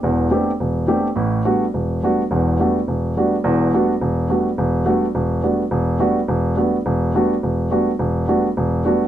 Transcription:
X:1
M:4/4
L:1/8
Q:"Swing" 1/4=211
K:Ador
V:1 name="Grand piano"
[E,,,E,,]2 [A,B,CDG] z E,,,2 [A,B,CDG] z | [K:Clyd] [A,,,A,,]2 [G,A,B,DF] z E,,,2 [G,A,B,DF] z | [E,,,E,,]2 [G,A,B,DF] z E,,,2 [G,A,B,DF] z | [E,,,E,,]2 [G,A,B,DF] z E,,,2 [G,A,B,DF] z |
E,,,2 [G,A,B,DF] z E,,,2 [G,A,B,DF] z | E,,,2 [G,A,B,DF] z E,,,2 [G,A,B,DF] z | E,,,2 [G,A,B,DF] z E,,,2 [G,A,B,DF] z | E,,,2 [G,A,B,DF] z E,,,2 [G,A,B,DF] z |]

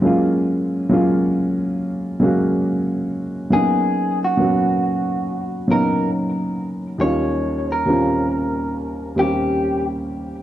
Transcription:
X:1
M:4/4
L:1/16
Q:"Swing 16ths" 1/4=69
K:F#
V:1 name="Clean electric guitar"
z16 | G3 F6- F A2 z4 | c3 A6- A =G3 z3 |]
V:2 name="Upright piano"
[F,G,A,CE]4 [F,G,A,CE]6 [F,G,A,CF]6 | [F,A,B,CD]4 [F,A,B,CF]6 [F,A,B,CD]6 | [D,,=G,A,CDE]4 [D,,G,A,^B,CE]6 [D,,G,A,B,C=G]6 |]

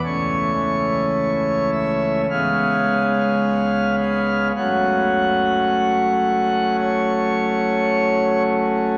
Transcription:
X:1
M:4/4
L:1/8
Q:1/4=54
K:F#m
V:1 name="Pipe organ"
c3 e ^e3 e | f4 c3 z |]
V:2 name="Pipe organ" clef=bass
[C,,,C,,E,A,C]4 [C,,,C,,G,B,C]4 | [F,,,F,,F,A,C]8 |]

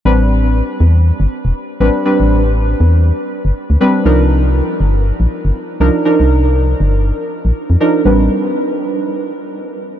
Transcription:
X:1
M:4/4
L:1/16
Q:"Swing 16ths" 1/4=120
K:Am
V:1 name="Synth stab"
[G,CDB]12- [G,CDB]2 [G,CDB]2 | [G,CDB]12- [G,CDB]2 [G,CDB]2 | [F,D_E_B]12- [F,DEB]2 [F,DEB]2 | [F,D_E_B]12- [F,DEB]2 [F,DEB]2 |
[G,CDB]2 z12 z2 |]
V:2 name="FM bass" clef=bass
A,,,4 z2 E,,2 z G,,, z E,,, z2 A,,, z | z A,,,4 z E,,2 z3 G,,, z D,, z2 | C,,4 z2 G,,,2 z _B,,, z G,,, z2 C,, z | z C,,4 z G,,,2 z3 _B,,, z F,, z2 |
A,,,2 z12 z2 |]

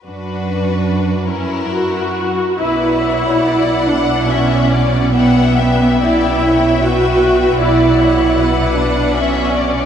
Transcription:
X:1
M:3/4
L:1/16
Q:1/4=73
K:Bm
V:1 name="Violin section"
F6 E4- E z | [df]12 | [eg]4 [eg]8 | [df]12 |]
V:2 name="Violin section"
B6 ^A4- A z | B2 c2 d2 f2 e2 d2 | f2 e2 d2 c2 B4 | d2 c2 B4 e2 d2 |]
V:3 name="Viola section"
D6 C2 F4 | E6 D2 C4 | B,4 E4 F4 | E6 D2 C4 |]
V:4 name="Cello section" clef=bass
F,,8- F,,3 z | B,,12- | B,,12 | B,,12 |]
V:5 name="Double bass section" clef=bass
z12 | B,,,12- | B,,,12 | B,,,12 |]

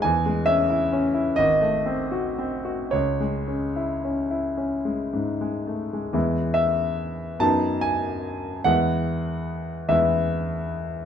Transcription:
X:1
M:12/8
L:1/16
Q:3/8=46
K:C#m
V:1 name="Grand piano"
g2 e4 d6 c6 z6 | [K:E] z2 e4 a2 g4 f6 e6 |]
V:2 name="Grand piano"
E,, G, C E C E G,,, A, ^B, F B, F C,, G, C E C E C G, G,, G, A, G, | [K:E] [E,,G,B,E]6 [F,,F,B,D]6 [E,,G,B,E]6 [E,,G,B,E]6 |]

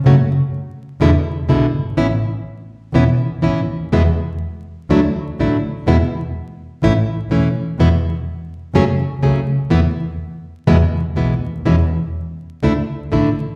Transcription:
X:1
M:4/4
L:1/8
Q:1/4=124
K:A
V:1 name="Nylon-string guitar"
[C,F,A,CF] z3 [B,,D,G,B,E] z [B,,D,G,B,E] z | [E,B,CE] z3 [E,B,CE] z [E,B,CE] z | [B,,E,G,B,E] z3 [D,F,A,DE] z [D,F,A,DE] z | [B,,E,G,B,E] z3 [E,A,CE] z [E,A,CE] z |
[B,,E,G,B,E] z3 [C,F,A,CG] z [C,F,A,CG] z | [E,A,B,E] z3 [B,,E,G,B,E] z [B,,E,G,B,E] z | [B,,E,G,CE] z3 [D,A,DE] z [D,A,DE] z |]
V:2 name="Double bass" clef=bass
F,,, z3 E,, z B,,, =G,,, | A,,, z3 E,,, z A,,, D,, | E,, z3 D,, z A,,, z | E,, z3 A,,, z E,,, z |
E,, z3 F,,, z C,, z | E,, z3 E,, z B,,, D,, | E,, z3 D,, z A,,, z |]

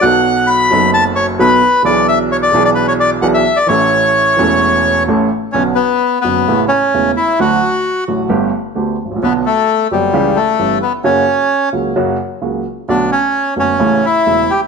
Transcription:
X:1
M:4/4
L:1/16
Q:1/4=131
K:Amix
V:1 name="Bandoneon"
f4 b4 a2 c2 B4 | d2 e2 c d2 d B c d2 f e2 d | c12 z4 | [K:Bm] C2 B,4 B,4 C4 E2 |
F6 z8 z2 | B,2 A,4 G,4 A,4 B,2 | C6 z8 z2 | D2 C4 C4 E4 G2 |]
V:2 name="Upright piano" clef=bass
[B,,,B,,F,B,^DA]6 [F,,,F,,F,B,DA]6 [B,,,B,,F,B,DA]2 z2 | [B,,,B,,E,B,D^G]6 [B,,,B,,E,B,DG]6 [B,,,B,,E,B,DG]2 z2 | [A,,,A,,E,A,CA]6 [E,,,E,,E,A,CA]6 [A,,,A,,E,A,CA]2 z2 | [K:Bm] [B,,,B,,D,B,CF]2 z4 [F,,,F,,D,B,CF]2 [A,,,A,,C,A,B,E]2 z2 [E,,,E,,C,A,B,E]2 z2 |
[D,,D,F,A,F]2 z4 [A,,,A,,D,F,A,F]2 [G,,,G,,D,A,B,G]2 z2 [D,,D,A,B,G]2 z/2 ^G,,,/2 A,,,/2 ^A,,,/2 | [B,,,B,,D,F,B,F]2 z4 [F,,,F,,D,F,B,F]2 [C,,C,E,G,CG]2 z2 [G,,,G,,E,G,CG]2 z2 | [F,,C,F,^A,F]2 z4 [C,,C,F,A,F]2 [F,,C,F,A,F]2 z2 [C,,C,F,A,F]2 z2 | [B,,,B,,D,A,B,F]2 z4 [F,,,F,,D,A,B,F]2 [A,,,A,,C,E,A,E]2 z2 [E,,,E,,C,E,A,E]2 z2 |]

